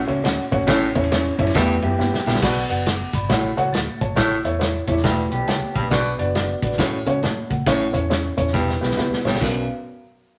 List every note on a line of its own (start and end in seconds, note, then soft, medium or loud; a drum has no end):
0.00 0.48 A2 medium
0.07 0.20 C#2 medium
0.07 0.18 C#4 medium
0.07 0.18 F#4 medium
0.07 0.19 A4 medium
0.07 0.19 C#5 medium
0.07 0.19 E5 medium
0.07 ride medium
0.07 muted conga medium
0.24 0.35 D2 loud
0.24 0.42 C#4 medium
0.24 0.42 F#4 medium
0.24 0.43 A4 medium
0.24 0.43 C#5 medium
0.24 0.43 F#5 medium
0.24 snare loud
0.24 ride medium
0.24 high conga medium
0.51 0.58 G1 loud
0.51 0.62 C#4 medium
0.51 0.63 F#4 medium
0.51 0.63 A4 medium
0.51 0.63 C#5 medium
0.51 0.63 F#5 loud
0.51 kick medium
0.51 ride medium
0.51 high conga medium
0.60 0.66 G#1 medium
0.67 0.89 A1 loud
0.67 0.89 A2 loud
0.67 1.35 A2 medium
0.67 0.86 C#4 loud
0.67 0.86 E4 loud
0.67 0.87 A4 loud
0.67 0.87 C#5 loud
0.67 0.87 E5 loud
0.67 kick loud
0.67 snare loud
0.67 ride medium
0.67 muted conga soft
0.95 1.28 E2 medium
0.95 1.06 C#4 loud
0.95 1.06 E4 medium
0.95 1.06 A4 medium
0.95 1.06 C#5 medium
0.95 1.06 E5 loud
0.95 kick medium
0.95 ride medium
1.04 ride medium
1.11 1.30 C#4 medium
1.11 1.30 E4 medium
1.11 1.30 A4 medium
1.11 1.30 C#5 medium
1.11 1.30 E5 loud
1.11 snare loud
1.11 ride medium
1.11 high conga medium
1.38 1.51 F#2 medium
1.38 1.54 G3 medium
1.38 1.50 C#4 medium
1.38 1.50 E4 medium
1.38 1.54 E4 medium
1.38 1.50 A4 medium
1.38 1.50 C#5 medium
1.38 1.50 E5 loud
1.38 kick medium
1.38 ride medium
1.47 snare soft
1.47 ride medium
1.54 1.76 E2 loud
1.54 1.77 G2 medium
1.54 2.22 E3 medium
1.54 1.82 A3 medium
1.54 1.74 B3 loud
1.54 1.74 E4 loud
1.54 1.81 F#4 medium
1.54 1.74 G4 medium
1.54 1.74 B4 loud
1.54 1.74 E5 loud
1.54 kick loud
1.54 snare loud
1.54 ride medium
1.54 muted conga medium
1.82 1.95 F#2 medium
1.82 1.93 B3 medium
1.82 2.40 B3 medium
1.82 1.93 E4 medium
1.82 2.39 G4 medium
1.82 1.94 G4 medium
1.82 1.93 B4 medium
1.82 1.93 E5 medium
1.82 ride medium
1.82 muted conga medium
1.98 2.09 G2 loud
1.98 2.17 B3 medium
1.98 2.17 E4 medium
1.98 2.17 G4 medium
1.98 2.17 B4 medium
1.98 2.17 E5 medium
1.98 snare medium
1.98 high conga medium
2.14 snare medium
2.26 2.39 A#1 loud
2.26 2.39 G2 medium
2.26 2.37 B3 medium
2.26 2.37 E4 medium
2.26 2.38 G4 medium
2.26 2.38 B4 medium
2.26 2.38 E5 loud
2.26 snare medium
2.26 high conga medium
2.35 snare loud
2.42 2.63 B1 loud
2.42 2.64 B2 medium
2.42 3.10 B2 medium
2.42 2.61 F#4 loud
2.42 2.61 B4 loud
2.42 2.61 D5 loud
2.42 2.61 F#5 loud
2.42 kick loud
2.42 snare loud
2.42 crash loud
2.69 3.03 F#1 medium
2.69 2.80 F#4 medium
2.69 2.81 B4 medium
2.69 2.81 D5 medium
2.69 2.80 F#5 loud
2.69 closed hi-hat medium
2.86 3.13 F#5 medium
2.86 3.13 D6 medium
2.86 snare loud
2.86 closed hi-hat loud
2.86 high conga medium
3.13 3.26 G1 medium
3.13 3.56 D5 medium
3.13 3.56 B5 medium
3.13 kick medium
3.13 closed hi-hat medium
3.29 3.51 A1 loud
3.29 3.97 A2 medium
3.29 3.52 A2 medium
3.29 3.48 F#4 medium
3.29 3.48 A4 medium
3.29 3.48 C#5 medium
3.29 3.48 F#5 medium
3.29 kick medium
3.29 snare loud
3.29 closed hi-hat medium
3.29 muted conga medium
3.29 low conga medium
3.57 3.69 C#2 medium
3.57 3.68 F#4 loud
3.57 3.68 A4 medium
3.57 3.68 C#5 medium
3.57 3.68 F#5 loud
3.57 closed hi-hat medium
3.57 muted conga medium
3.73 3.84 D2 medium
3.73 3.99 C#6 medium
3.73 3.99 A6 medium
3.73 snare loud
3.73 closed hi-hat loud
3.73 high conga medium
3.87 high conga soft
4.01 4.07 G1 medium
4.01 4.15 C#5 medium
4.01 4.43 A5 medium
4.01 kick medium
4.01 closed hi-hat medium
4.01 high conga medium
4.08 4.15 G#1 medium
4.16 4.38 A1 loud
4.16 4.39 A2 medium
4.16 4.84 A2 medium
4.16 4.35 E4 loud
4.16 4.35 A4 medium
4.16 4.35 C#5 loud
4.16 4.35 E5 loud
4.16 kick loud
4.16 snare loud
4.16 closed hi-hat medium
4.44 4.78 E2 medium
4.44 4.55 E4 medium
4.44 4.56 A4 medium
4.44 4.56 C#5 medium
4.44 4.56 E5 loud
4.44 closed hi-hat medium
4.59 4.78 E4 medium
4.59 4.78 A4 medium
4.59 4.79 C#5 medium
4.59 4.79 E5 medium
4.59 snare loud
4.59 closed hi-hat loud
4.59 high conga medium
4.87 5.00 E2 medium
4.87 5.04 G3 medium
4.87 4.98 E4 medium
4.87 5.04 E4 medium
4.87 4.99 A4 medium
4.87 4.99 C#5 medium
4.87 4.99 E5 medium
4.87 kick medium
4.87 closed hi-hat medium
4.96 snare soft
5.03 5.25 E1 loud
5.03 5.26 G2 medium
5.03 5.71 E3 medium
5.03 5.31 A3 medium
5.03 5.23 E4 medium
5.03 5.31 F#4 medium
5.03 5.23 G4 medium
5.03 5.23 B4 medium
5.03 5.23 E5 medium
5.03 kick medium
5.03 snare loud
5.03 closed hi-hat medium
5.03 muted conga medium
5.31 5.44 B1 medium
5.31 5.89 B3 medium
5.31 5.88 G4 medium
5.31 5.47 D5 medium
5.31 5.47 B5 medium
5.31 closed hi-hat medium
5.31 muted conga medium
5.47 5.58 C#2 medium
5.47 5.74 C#5 medium
5.47 5.74 A5 medium
5.47 snare loud
5.47 closed hi-hat medium
5.47 high conga medium
5.62 high conga soft
5.75 5.82 A1 medium
5.75 5.88 G2 medium
5.75 5.89 B4 medium
5.75 6.17 G5 medium
5.75 kick medium
5.75 closed hi-hat medium
5.75 high conga medium
5.83 5.89 A#1 medium
5.90 6.12 B1 loud
5.90 6.59 B2 medium
5.90 6.13 B2 medium
5.90 6.10 D4 loud
5.90 6.10 F#4 loud
5.90 6.10 B4 loud
5.90 6.10 D5 loud
5.90 kick loud
5.90 snare loud
5.90 closed hi-hat medium
6.19 6.52 F#1 loud
6.19 6.30 D4 medium
6.19 6.30 F#4 medium
6.19 6.30 B4 medium
6.19 6.30 D5 loud
6.19 closed hi-hat medium
6.35 6.54 D4 medium
6.35 6.54 F#4 medium
6.35 6.54 B4 medium
6.35 6.54 D5 loud
6.35 snare loud
6.35 closed hi-hat medium
6.35 high conga medium
6.62 6.80 A1 medium
6.62 6.73 D4 medium
6.62 6.74 F#4 medium
6.62 6.74 B4 medium
6.62 6.74 D5 medium
6.62 kick medium
6.62 closed hi-hat medium
6.72 snare soft
6.78 7.01 A2 medium
6.78 7.00 A2 loud
6.78 7.47 A2 medium
6.78 6.98 C#4 medium
6.78 6.98 F#4 medium
6.78 6.98 A4 medium
6.78 6.98 C#5 medium
6.78 kick medium
6.78 snare loud
6.78 closed hi-hat medium
6.78 muted conga medium
6.78 low conga medium
7.06 7.24 C#2 medium
7.06 7.17 C#4 loud
7.06 7.17 F#4 loud
7.06 7.17 A4 medium
7.06 7.18 C#5 loud
7.06 closed hi-hat medium
7.06 muted conga medium
7.22 7.44 A2 medium
7.22 7.49 A5 medium
7.22 snare loud
7.22 closed hi-hat medium
7.22 high conga medium
7.36 high conga soft
7.50 7.63 C#2 medium
7.50 7.66 A4 medium
7.50 7.92 F#5 medium
7.50 kick medium
7.50 closed hi-hat medium
7.50 high conga medium
7.66 7.87 A1 loud
7.66 7.89 A2 medium
7.66 8.34 A2 medium
7.66 7.86 C#4 loud
7.66 7.86 E4 medium
7.66 7.86 A4 medium
7.66 7.86 C#5 loud
7.66 kick loud
7.66 snare loud
7.66 closed hi-hat medium
7.92 8.27 E2 medium
7.92 8.04 C#4 medium
7.92 8.04 E4 medium
7.92 8.05 A4 medium
7.92 8.05 C#5 medium
7.92 kick medium
7.92 closed hi-hat medium
8.10 8.29 C#4 medium
8.10 8.29 E4 medium
8.10 8.29 A4 medium
8.10 8.29 C#5 medium
8.10 snare loud
8.10 closed hi-hat medium
8.10 high conga medium
8.37 8.50 E2 medium
8.37 8.48 C#4 medium
8.37 8.48 E4 medium
8.37 8.49 A4 medium
8.37 8.49 C#5 medium
8.37 kick medium
8.37 closed hi-hat medium
8.47 snare soft
8.53 8.75 E1 loud
8.53 8.76 G2 medium
8.53 9.21 E3 medium
8.53 8.72 B3 medium
8.53 8.72 E4 medium
8.53 8.72 G4 medium
8.53 8.73 B4 medium
8.53 kick medium
8.53 snare medium
8.53 muted conga medium
8.69 snare medium
8.80 8.94 B1 medium
8.80 8.92 B3 loud
8.80 8.92 E4 medium
8.80 8.92 G4 medium
8.80 8.92 B4 loud
8.80 snare medium
8.80 muted conga medium
8.91 snare medium
8.96 9.08 C#2 medium
8.96 9.16 B3 loud
8.96 9.16 E4 loud
8.96 9.16 G4 medium
8.96 9.16 B4 loud
8.96 snare medium
8.96 high conga medium
9.11 snare medium
9.11 high conga soft
9.25 9.31 A1 medium
9.25 9.39 G2 medium
9.25 9.36 B3 medium
9.25 9.36 E4 medium
9.25 9.36 G4 medium
9.25 9.36 C#5 medium
9.25 snare medium
9.25 high conga medium
9.33 9.39 A#1 medium
9.33 snare loud
9.41 9.67 B1 medium
9.41 9.67 B1 loud
9.41 9.67 F#2 medium
9.41 9.67 B3 medium
9.41 9.67 D4 medium
9.41 9.67 F#4 medium
9.41 9.67 B4 medium
9.41 kick loud
9.41 snare medium
9.41 crash medium
9.41 muted conga medium